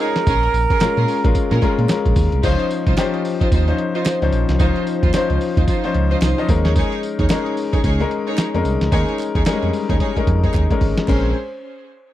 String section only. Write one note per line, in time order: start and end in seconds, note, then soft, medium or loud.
0.00 0.18 D#4 medium
0.00 0.18 G#4 medium
0.00 0.18 C#5 medium
0.27 0.45 C#4 medium
0.27 0.45 G#4 medium
0.27 0.45 A#4 loud
0.70 0.83 C#4 medium
0.70 0.84 G#4 medium
0.70 0.84 A#4 medium
0.97 1.11 C#4 medium
0.97 1.11 G#4 medium
0.97 1.11 A#4 medium
1.51 1.65 C#4 medium
1.51 1.65 G#4 medium
1.51 1.65 A#4 medium
2.43 2.61 D#4 medium
2.43 2.61 F4 medium
2.43 2.61 C5 loud
2.86 2.96 D#4 medium
2.86 2.96 F4 medium
2.86 2.96 C5 medium
2.97 3.15 D#4 medium
2.97 3.15 F4 medium
2.97 3.16 C5 medium
3.41 3.50 D#4 medium
3.41 3.51 F4 medium
3.41 3.51 C5 medium
3.52 3.70 D#4 medium
3.52 3.70 F4 medium
3.52 3.70 C5 medium
3.95 4.08 D#4 medium
3.95 4.08 F4 medium
3.95 4.08 C5 medium
4.59 4.77 D#4 loud
4.59 4.78 F4 medium
4.59 4.78 C5 loud
5.03 5.12 D#4 medium
5.03 5.12 F4 medium
5.03 5.13 C5 medium
5.13 5.32 D#4 medium
5.13 5.32 F4 medium
5.13 5.32 C5 medium
5.57 5.66 D#4 medium
5.57 5.67 F4 medium
5.57 5.67 C5 medium
5.67 5.86 D#4 medium
5.67 5.86 F4 medium
5.67 5.86 C5 medium
6.11 6.20 D#4 medium
6.11 6.20 F4 medium
6.11 6.21 C5 medium
6.21 6.40 D#4 medium
6.21 6.40 F4 medium
6.21 6.40 C5 medium
6.65 6.74 D#4 medium
6.65 6.74 G#4 medium
6.65 6.75 C#5 medium
6.75 6.94 D#4 medium
6.75 6.94 G#4 medium
6.75 6.94 C#5 loud
7.19 7.28 D#4 medium
7.19 7.29 G#4 medium
7.19 7.29 C#5 medium
7.30 7.48 D#4 medium
7.30 7.48 G#4 medium
7.30 7.48 C#5 medium
7.73 7.83 D#4 medium
7.73 7.83 G#4 medium
7.73 7.83 C#5 medium
7.84 8.02 D#4 medium
7.84 8.02 G#4 medium
7.84 8.02 C#5 medium
8.27 8.40 D#4 medium
8.27 8.41 G#4 medium
8.27 8.41 C#5 medium
8.92 9.10 D#4 medium
8.92 9.10 G#4 medium
8.92 9.10 C#5 loud
9.35 9.45 D#4 medium
9.35 9.45 G#4 medium
9.35 9.45 C#5 medium
9.46 9.64 D#4 medium
9.46 9.64 G#4 medium
9.46 9.64 C#5 medium
9.89 9.98 D#4 medium
9.89 9.99 G#4 medium
9.89 9.99 C#5 medium
10.00 10.18 D#4 medium
10.00 10.18 G#4 medium
10.00 10.18 C#5 medium
10.43 10.57 D#4 medium
10.43 10.57 G#4 medium
10.43 10.57 C#5 medium
11.08 11.29 C#4 medium
11.08 11.29 G#4 medium
11.08 11.30 C5 loud